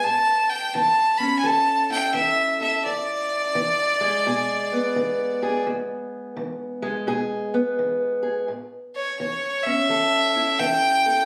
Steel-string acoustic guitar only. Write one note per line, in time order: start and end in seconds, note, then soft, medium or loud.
0.04 0.69 A2 medium
0.75 1.40 E3 medium
1.20 2.82 C#4 medium
1.44 2.09 E3 medium
1.44 2.59 A4 medium
1.90 4.72 E4 medium
2.14 2.80 E3 medium
2.60 2.82 A4 medium
2.85 3.51 E2 medium
3.55 4.20 E3 medium
4.01 6.81 G#3 medium
4.26 4.91 B2 medium
4.26 5.41 G#4 medium
4.72 7.53 B3 medium
4.96 5.61 E3 medium
5.42 5.64 G#4 medium
5.67 6.32 E2 medium
6.37 7.02 E3 medium
6.82 8.48 G#3 medium
7.07 7.72 B2 medium
7.07 8.21 G#4 medium
7.54 8.49 B3 medium
7.79 8.43 E3 medium
8.23 8.45 G#4 medium
8.48 9.13 A2 medium
9.20 9.84 E3 medium
9.66 11.25 C#4 medium
9.89 10.54 E3 medium
9.89 11.05 A4 medium
10.35 11.25 E4 medium
10.60 11.25 E3 medium
11.06 11.25 A4 medium